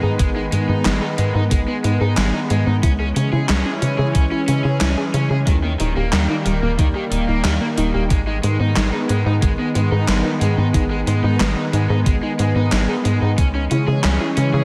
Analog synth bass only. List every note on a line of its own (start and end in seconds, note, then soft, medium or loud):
0.03 0.18 G#2 medium
0.19 0.49 G#1 loud
0.52 0.67 G#2 loud
0.69 0.84 G#2 medium
0.85 1.00 G#1 medium
1.18 1.33 G#2 medium
1.35 1.50 G#2 loud
1.51 1.66 G#1 loud
1.84 1.99 G#2 loud
2.01 2.16 G#2 medium
2.17 2.32 G#1 loud
2.50 2.65 G#2 loud
2.67 2.82 G#2 medium
2.83 3.13 C#2 loud
3.16 3.31 C#3 medium
3.33 3.48 C#3 medium
3.49 3.64 C#2 medium
3.82 3.97 C#3 medium
3.99 4.14 C#3 loud
4.15 4.30 C#2 loud
4.48 4.63 C#3 loud
4.65 4.80 C#3 medium
4.81 4.96 C#2 loud
5.14 5.29 C#3 loud
5.30 5.45 C#3 medium
5.47 5.77 D#2 loud
5.80 5.95 D#1 medium
5.96 6.11 D#1 medium
6.13 6.28 D#2 medium
6.46 6.61 D#1 medium
6.62 6.77 D#1 loud
6.79 6.94 D#2 loud
7.11 7.26 D#1 loud
7.28 7.43 D#1 medium
7.45 7.60 D#2 loud
7.78 7.93 D#1 loud
7.94 8.09 D#1 medium
8.11 8.41 G#1 loud
8.44 8.59 G#2 medium
8.60 8.75 G#2 medium
8.77 8.92 G#1 medium
9.10 9.25 G#2 medium
9.26 9.41 G#2 loud
9.43 9.57 G#1 loud
9.76 9.90 G#2 loud
9.92 10.07 G#2 medium
10.08 10.23 G#1 loud
10.41 10.56 G#2 medium
10.58 10.73 G#2 medium
10.74 11.04 G#1 loud
11.07 11.22 G#2 loud
11.24 11.39 G#2 medium
11.40 11.55 G#1 medium
11.73 11.88 G#2 medium
11.90 12.05 G#2 loud
12.06 12.21 G#1 loud
12.39 12.54 G#2 loud
12.56 12.71 G#2 medium
12.72 12.87 G#1 loud
13.05 13.20 G#2 medium
13.22 13.37 G#2 medium
13.38 13.68 C#2 loud
13.71 13.86 C#3 medium
13.88 14.03 C#3 medium
14.04 14.19 C#2 medium
14.37 14.52 C#3 medium
14.54 14.64 C#3 loud